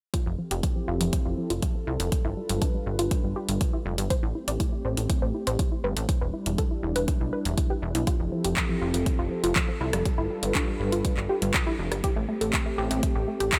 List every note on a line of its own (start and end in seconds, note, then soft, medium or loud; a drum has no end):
0.14 2.10 F3 medium
0.14 2.10 C4 medium
0.14 2.10 E4 medium
0.14 0.20 F4 medium
0.14 2.10 G4 medium
0.14 4.06 A4 medium
0.14 kick loud
0.14 closed hi-hat medium
0.26 0.37 F1 medium
0.26 0.33 F3 medium
0.39 0.45 F3 medium
0.51 0.61 F1 medium
0.51 0.57 G4 medium
0.51 closed hi-hat soft
0.63 0.70 F3 medium
0.63 kick loud
0.63 closed hi-hat medium
0.76 0.82 F3 medium
0.88 0.99 F1 medium
0.88 0.95 F4 medium
1.01 1.11 F1 medium
1.01 1.07 F3 medium
1.01 closed hi-hat soft
1.13 1.19 F3 medium
1.13 kick loud
1.13 closed hi-hat medium
1.25 1.36 F1 medium
1.25 1.32 F4 medium
1.38 1.44 F3 medium
1.50 1.61 F1 medium
1.50 1.57 F4 medium
1.50 closed hi-hat medium
1.62 1.69 F3 medium
1.62 kick loud
1.62 closed hi-hat medium
1.75 1.81 F3 medium
1.87 1.98 C2 medium
1.87 1.94 E4 medium
2.00 2.10 F1 medium
2.00 2.06 G3 medium
2.00 closed hi-hat medium
2.12 4.08 G3 medium
2.12 2.19 G3 medium
2.12 4.08 D4 medium
2.12 4.08 F4 medium
2.12 4.08 B4 medium
2.12 kick loud
2.12 closed hi-hat medium
2.25 2.35 G1 medium
2.25 2.31 E4 medium
2.37 2.43 G3 medium
2.49 2.60 G1 medium
2.49 2.56 G3 medium
2.49 closed hi-hat medium
2.62 2.68 D4 medium
2.62 kick loud
2.62 closed hi-hat medium
2.74 2.81 G3 medium
2.86 2.97 G1 medium
2.86 2.93 G3 medium
2.99 3.09 G1 medium
2.99 3.05 F4 loud
2.99 closed hi-hat medium
3.11 3.18 G3 medium
3.11 kick loud
3.11 closed hi-hat medium
3.24 3.34 G1 medium
3.24 3.30 G3 medium
3.36 3.43 G4 loud
3.49 3.59 G1 medium
3.49 3.55 G3 medium
3.49 closed hi-hat medium
3.61 3.67 G3 medium
3.61 kick loud
3.61 closed hi-hat medium
3.73 3.80 E4 loud
3.86 3.96 F1 medium
3.86 3.92 G3 medium
3.98 4.09 G1 medium
3.98 4.05 G3 medium
3.98 closed hi-hat medium
4.10 6.07 A3 medium
4.10 6.07 C4 medium
4.10 6.07 G4 medium
4.10 4.17 C5 loud
4.10 kick loud
4.10 closed hi-hat medium
4.23 4.33 A1 medium
4.23 4.29 E4 medium
4.35 4.42 E4 medium
4.48 4.58 A1 medium
4.48 4.54 D5 medium
4.48 closed hi-hat soft
4.60 4.67 E4 medium
4.60 kick loud
4.60 closed hi-hat medium
4.73 4.79 E4 medium
4.85 4.95 A1 medium
4.85 4.91 C5 medium
4.97 5.08 A1 medium
4.97 5.04 E4 medium
4.97 closed hi-hat soft
5.10 5.16 E4 medium
5.10 kick loud
5.10 closed hi-hat medium
5.22 5.33 A1 medium
5.22 5.28 C5 medium
5.34 5.41 E4 medium
5.47 5.57 A1 medium
5.47 5.53 C5 medium
5.47 closed hi-hat soft
5.59 5.66 E4 medium
5.59 kick loud
5.59 closed hi-hat medium
5.72 5.78 E4 medium
5.84 5.95 G1 medium
5.84 5.90 B4 medium
5.97 6.07 A1 medium
5.97 6.03 E4 medium
5.97 closed hi-hat soft
6.09 8.05 G3 medium
6.09 8.05 D4 medium
6.09 10.02 E4 medium
6.09 6.15 E4 medium
6.09 kick loud
6.09 closed hi-hat medium
6.21 6.32 E1 medium
6.21 6.28 B4 medium
6.34 6.40 E4 medium
6.46 6.57 E1 medium
6.46 6.52 E4 medium
6.46 closed hi-hat soft
6.58 6.65 A4 loud
6.58 kick loud
6.58 closed hi-hat medium
6.71 6.77 E4 medium
6.83 6.94 E1 medium
6.83 6.90 E4 medium
6.96 7.06 E1 medium
6.96 7.02 B4 loud
6.96 closed hi-hat soft
7.08 7.14 E4 medium
7.08 kick loud
7.08 closed hi-hat medium
7.21 7.31 B1 medium
7.21 7.27 E4 medium
7.33 7.39 B4 loud
7.45 7.56 E1 medium
7.45 7.52 E4 medium
7.45 closed hi-hat soft
7.58 7.64 E4 medium
7.58 kick loud
7.58 closed hi-hat medium
7.70 7.76 G4 loud
7.82 7.93 E1 medium
7.82 7.89 E4 medium
7.95 8.05 B1 medium
7.95 8.01 E4 medium
7.95 closed hi-hat soft
8.07 10.03 F3 medium
8.07 10.03 C4 medium
8.07 8.14 F4 medium
8.07 10.03 G4 medium
8.07 12.00 A4 medium
8.07 kick loud
8.07 closed hi-hat medium
8.20 8.30 F1 medium
8.20 8.26 F3 medium
8.32 8.38 F3 medium
8.45 8.55 F1 medium
8.45 8.51 G4 medium
8.45 closed hi-hat soft
8.57 8.63 F3 medium
8.57 kick loud
8.57 clap loud
8.57 closed hi-hat medium
8.69 8.76 F3 medium
8.81 8.92 F1 medium
8.81 8.88 F4 medium
8.94 9.04 F1 medium
8.94 9.00 F3 medium
8.94 closed hi-hat soft
9.06 9.13 F3 medium
9.06 kick loud
9.06 closed hi-hat medium
9.19 9.29 F1 medium
9.19 9.25 F4 medium
9.31 9.38 F3 medium
9.44 9.54 F1 medium
9.44 9.50 F4 medium
9.44 closed hi-hat soft
9.56 9.62 F3 medium
9.56 kick loud
9.56 clap loud
9.56 closed hi-hat medium
9.68 9.75 F3 medium
9.81 9.91 C2 medium
9.81 9.87 E4 medium
9.93 10.04 F1 medium
9.93 10.00 G3 medium
9.93 cross-stick medium
9.93 closed hi-hat soft
10.05 10.12 G3 medium
10.05 12.02 G3 medium
10.05 12.02 D4 medium
10.05 12.02 F4 medium
10.05 12.02 B4 medium
10.05 kick loud
10.05 closed hi-hat medium
10.18 10.28 G1 medium
10.18 10.24 E4 medium
10.30 10.37 G3 medium
10.43 10.53 G1 medium
10.43 10.49 G3 medium
10.43 closed hi-hat soft
10.55 10.62 D4 medium
10.55 kick loud
10.55 clap loud
10.55 closed hi-hat medium
10.68 10.74 G3 medium
10.80 10.90 G1 medium
10.80 10.86 G3 medium
10.92 10.99 F4 medium
10.92 closed hi-hat soft
11.05 11.11 G3 medium
11.05 kick loud
11.05 closed hi-hat medium
11.17 11.28 G1 medium
11.17 11.24 G3 medium
11.17 clap soft
11.29 11.36 G4 medium
11.42 11.52 G1 medium
11.42 11.48 G3 medium
11.42 closed hi-hat soft
11.54 11.61 G3 medium
11.54 kick loud
11.54 clap loud
11.54 closed hi-hat medium
11.67 11.73 E4 loud
11.79 11.90 F1 medium
11.79 11.86 G3 medium
11.92 12.02 G1 medium
11.92 11.98 G3 medium
11.92 cross-stick medium
11.92 closed hi-hat medium
12.04 13.59 A3 medium
12.04 13.59 C4 medium
12.04 13.59 G4 medium
12.04 12.10 G4 loud
12.04 kick loud
12.04 closed hi-hat medium
12.16 12.27 A1 medium
12.16 12.23 A3 medium
12.29 12.35 A3 medium
12.41 12.52 A1 medium
12.41 12.48 A4 medium
12.41 closed hi-hat medium
12.53 12.60 A3 medium
12.53 kick loud
12.53 clap loud
12.53 closed hi-hat medium
12.66 12.72 A3 medium
12.78 12.89 A1 medium
12.78 12.85 G4 medium
12.91 13.01 A1 medium
12.91 12.97 A3 medium
12.91 closed hi-hat medium
13.03 13.10 A3 medium
13.03 kick loud
13.03 closed hi-hat medium
13.16 13.26 A1 medium
13.16 13.22 G4 medium
13.28 13.34 A3 medium
13.40 13.51 A1 medium
13.40 13.47 G4 medium
13.40 closed hi-hat medium
13.52 13.59 A3 medium
13.52 kick loud
13.52 clap loud
13.52 closed hi-hat medium